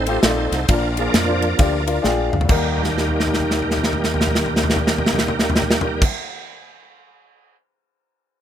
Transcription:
0.00 0.17 A1 medium
0.00 0.20 C4 medium
0.00 0.23 D#4 medium
0.00 0.24 A4 medium
0.00 0.21 C5 loud
0.07 0.16 A3 medium
0.07 0.16 C4 medium
0.07 0.16 D#4 medium
0.07 0.17 F4 medium
0.07 0.17 G4 medium
0.07 ride medium
0.23 0.48 A#1 medium
0.23 0.53 A3 medium
0.23 0.53 C4 medium
0.23 0.66 D#4 medium
0.23 0.53 D#4 medium
0.23 0.53 F4 medium
0.23 0.66 A4 medium
0.23 0.71 C5 loud
0.23 0.53 D5 medium
0.23 snare loud
0.23 ride medium
0.52 0.66 C2 loud
0.52 snare soft
0.52 ride medium
0.68 1.07 A#1 loud
0.68 1.39 A#2 medium
0.68 0.84 D4 medium
0.68 0.99 D4 medium
0.68 0.99 F4 medium
0.68 0.84 F4 medium
0.68 0.96 A#4 loud
0.68 0.84 A#4 medium
0.68 kick loud
0.68 ride medium
0.97 1.57 F3 medium
0.97 1.58 A#3 medium
0.97 1.10 D4 medium
0.97 1.58 D4 medium
0.97 1.11 F4 medium
0.97 2.30 F4 medium
0.97 1.11 G#4 medium
0.97 2.31 A#4 medium
0.97 2.30 D5 loud
0.97 ride medium
1.14 1.52 F2 medium
1.14 snare loud
1.14 ride medium
1.28 1.47 D4 medium
1.28 1.47 F4 medium
1.28 1.48 C5 medium
1.42 ride medium
1.58 1.98 D2 medium
1.58 1.84 F3 medium
1.58 1.85 A#3 soft
1.58 1.73 D4 medium
1.58 1.85 D4 medium
1.58 1.74 F4 medium
1.58 1.74 G4 medium
1.58 kick loud
1.58 snare soft
1.58 ride medium
1.87 1.96 D4 medium
1.87 1.96 F4 medium
1.87 1.96 A#4 loud
1.87 2.03 A#5 medium
1.87 ride medium
2.02 2.29 A#1 medium
2.02 2.32 D4 medium
2.02 2.33 F4 medium
2.02 2.33 G#4 loud
2.02 2.30 G5 medium
2.02 snare medium
2.32 2.47 D2 loud
2.32 2.48 F5 medium
2.32 mid tom loud
2.41 floor tom loud
2.45 6.04 D#2 medium
2.45 6.02 G3 medium
2.45 6.03 A#3 medium
2.45 kick loud
2.45 crash loud
2.49 6.04 D#3 medium
2.49 6.05 G3 medium
2.49 6.05 A#3 medium
2.49 6.04 D#4 medium
2.49 6.05 G4 medium
2.49 6.05 A#4 medium
2.78 floor tom soft
2.84 snare soft
2.90 floor tom soft
2.98 snare medium
3.09 floor tom medium
3.20 snare medium
3.27 floor tom medium
3.34 snare medium
3.40 floor tom medium
3.51 snare medium
3.62 floor tom medium
3.71 snare medium
3.77 floor tom medium
3.84 snare medium
3.93 floor tom medium
4.04 snare medium
4.14 floor tom medium
4.21 snare medium
4.27 floor tom medium
4.35 snare medium
4.46 floor tom medium
4.56 snare medium
4.63 floor tom medium
4.70 snare medium
4.76 floor tom medium
4.87 snare medium
4.98 floor tom medium
5.06 snare medium
5.13 floor tom medium
5.18 snare medium
5.28 floor tom medium
5.39 snare medium
5.50 floor tom medium
5.56 snare medium
5.62 floor tom medium
5.71 snare loud
5.81 floor tom loud
6.02 kick loud
6.02 crash loud

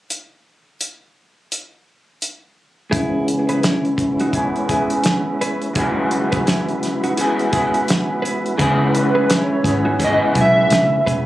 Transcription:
0.10 closed hi-hat soft
0.81 closed hi-hat soft
1.52 closed hi-hat soft
2.22 closed hi-hat soft
2.90 4.34 C#3 medium
2.90 4.34 E3 medium
2.90 5.71 G#3 medium
2.90 5.71 C#4 medium
2.90 3.26 E4 medium
2.90 5.72 E4 medium
2.90 3.26 G#4 medium
2.90 kick medium
2.90 closed hi-hat medium
2.94 4.35 B3 medium
2.94 4.36 C#4 medium
2.94 4.37 G#4 medium
2.94 5.73 B4 medium
3.28 closed hi-hat medium
3.49 3.62 G#4 soft
3.49 3.63 B4 medium
3.49 closed hi-hat soft
3.63 3.84 E4 soft
3.63 3.84 G#4 medium
3.63 snare medium
3.63 closed hi-hat medium
3.85 closed hi-hat soft
3.98 kick medium
3.98 closed hi-hat medium
4.20 4.34 D#4 soft
4.20 4.34 F#4 medium
4.20 closed hi-hat soft
4.33 4.70 E3 medium
4.33 4.70 B3 medium
4.33 4.69 C#4 medium
4.33 4.69 E4 medium
4.33 4.68 G#4 medium
4.33 kick medium
4.33 closed hi-hat medium
4.37 4.67 G#4 medium
4.56 closed hi-hat soft
4.68 5.77 B3 soft
4.68 5.78 C#4 soft
4.68 4.91 E4 soft
4.68 5.76 G#4 medium
4.68 4.90 G#4 medium
4.68 kick medium
4.68 closed hi-hat medium
4.90 closed hi-hat soft
5.04 snare medium
5.04 closed hi-hat medium
5.41 5.61 G#4 medium
5.41 5.61 B4 medium
5.41 closed hi-hat medium
5.62 closed hi-hat soft
5.73 7.16 F#2 medium
5.73 7.17 C#3 medium
5.73 7.17 E3 medium
5.73 8.54 G#3 medium
5.73 7.19 B3 medium
5.73 8.55 E4 medium
5.73 6.10 E4 medium
5.73 8.56 F#4 medium
5.73 6.10 G#4 medium
5.73 kick medium
5.73 closed hi-hat medium
5.78 7.20 C#4 medium
5.78 7.20 G#4 medium
5.78 8.56 B4 medium
6.11 closed hi-hat medium
6.32 6.45 G#4 soft
6.32 6.46 B4 medium
6.32 kick medium
6.32 closed hi-hat soft
6.46 6.67 E4 soft
6.46 6.67 G#4 medium
6.46 snare loud
6.46 closed hi-hat medium
6.69 closed hi-hat soft
6.83 snare soft
6.83 closed hi-hat medium
7.04 7.17 D#4 soft
7.04 7.17 F#4 medium
7.04 closed hi-hat soft
7.17 7.53 E3 medium
7.17 7.54 B3 medium
7.17 7.53 C#4 medium
7.17 7.51 E4 medium
7.17 7.50 G#4 medium
7.17 7.52 G#4 medium
7.17 closed hi-hat medium
7.39 closed hi-hat soft
7.52 8.59 B3 soft
7.52 8.59 C#4 soft
7.52 7.73 E4 soft
7.52 7.73 G#4 medium
7.52 8.60 G#4 medium
7.52 kick medium
7.52 closed hi-hat medium
7.56 8.59 E3 soft
7.74 closed hi-hat soft
7.88 snare medium
7.88 closed hi-hat medium
8.22 8.44 G#4 medium
8.22 8.43 B4 medium
8.22 closed hi-hat medium
8.46 closed hi-hat soft
8.57 9.61 C#2 loud
8.57 9.65 C#3 medium
8.57 10.00 E3 medium
8.57 9.93 G#3 medium
8.57 9.68 B3 medium
8.57 9.93 C#4 medium
8.57 9.66 C#4 medium
8.57 9.93 E4 medium
8.57 8.93 E4 medium
8.57 8.92 G#4 medium
8.57 9.64 G#4 medium
8.57 9.94 B4 medium
8.57 kick loud
8.57 closed hi-hat medium
8.95 9.35 B4 medium
8.95 closed hi-hat medium
9.15 9.28 G#4 medium
9.15 9.29 B4 medium
9.29 9.50 E4 medium
9.29 9.50 G#4 medium
9.29 snare loud
9.29 closed hi-hat medium
9.34 10.03 C#5 loud
9.64 10.21 G#1 medium
9.64 10.01 C#4 soft
9.64 10.00 G#4 soft
9.64 kick medium
9.64 snare soft
9.64 closed hi-hat medium
9.68 10.01 B3 soft
9.85 10.00 D#4 medium
9.85 9.99 F#4 medium
9.99 11.26 C#3 medium
9.99 11.26 E3 medium
9.99 11.01 G#3 medium
9.99 11.26 B3 medium
9.99 11.01 C#4 medium
9.99 10.34 E4 medium
9.99 11.02 E4 medium
9.99 10.34 G#4 medium
9.99 11.02 B4 medium
9.99 kick medium
9.99 closed hi-hat medium
10.03 11.26 C#4 medium
10.03 11.26 G#4 medium
10.03 10.18 D#5 loud
10.35 10.64 B1 medium
10.35 10.57 E4 medium
10.35 10.56 G#4 medium
10.35 kick medium
10.35 closed hi-hat medium
10.40 11.05 E5 loud
10.70 11.00 C#2 medium
10.70 snare loud
10.70 closed hi-hat medium
11.05 11.26 E1 medium
11.05 11.26 G#3 medium
11.05 11.26 C#4 medium
11.05 11.26 E4 medium
11.05 11.26 G#4 medium
11.05 11.26 B4 medium
11.05 kick medium
11.05 closed hi-hat medium

